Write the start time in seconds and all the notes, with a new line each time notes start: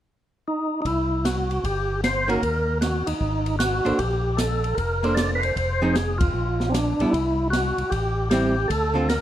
0.48 D#4
0.82 C2 D#4, kick, ride
0.86 E4
1.25 F#4, snare, hi-hat pedal, ride
1.51 ride
1.64 G1 G4, kick, ride
2.04 C5, snare, hi-hat pedal, ride
2.28 D#3 A#3 C#4 F#4 A#4, ride
2.42 D#2, kick, ride
2.81 F#4, snare, hi-hat pedal, ride
3.06 D#2 D#4, ride
3.21 G#1, kick
3.46 ride
3.59 F#4, snare, hi-hat pedal, ride
3.85 G#1 A#3 D4 A4 C5, ride
3.99 A#1 G4, kick, ride
4.37 A4, snare, hi-hat pedal, ride
4.64 ride
4.75 F1 A#4, kick, ride
5.03 A#3 D4 A4 C5, ride
5.15 D5, snare, hi-hat pedal, ride
5.35 B4
5.40 C5, ride
5.56 F1, kick, ride
5.81 F3 C4 D#4 G#4
5.93 G#4, snare, hi-hat pedal, ride
6.18 F4, kick, ride
6.34 A#1
6.60 snare
6.70 C4 D4
6.74 snare, hi-hat pedal, ride
6.99 A#1 G3 B3 E4, ride
7.10 C2 E4, kick
7.14 ride
7.50 F#4, snare, hi-hat pedal, ride
7.77 C2, ride
7.90 A1 G4, kick, ride
8.30 G3 C4 E4 G4, snare, hi-hat pedal, ride
8.68 D2 A4, kick, ride
8.94 D3 C4 F4 A4
9.09 A#4, snare, hi-hat pedal, ride